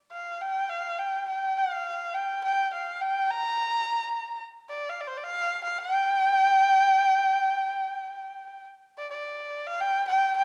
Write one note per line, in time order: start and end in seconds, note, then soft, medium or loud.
0.12 0.43 F5 medium
0.42 0.71 G5 medium
0.69 1.00 F5 medium
0.99 1.27 G5 medium
1.28 1.59 G5 medium
1.58 2.16 F5 medium
2.14 2.43 G5 medium
2.44 2.70 G5 medium
2.73 3.03 F5 medium
3.01 3.32 G5 medium
3.30 4.43 A#5 loud
4.70 4.91 D5 medium
4.90 5.02 F5 medium
5.01 5.09 D5 medium
5.07 5.19 C5 medium
5.17 5.25 D5 medium
5.24 5.63 F5 loud
5.64 5.79 F5 medium
5.78 8.66 G5 loud
8.97 9.10 D5 medium
9.10 9.68 D5 medium
9.67 9.82 F5 loud
9.81 10.07 G5 loud
10.08 10.35 G5 loud
10.36 10.44 G5 loud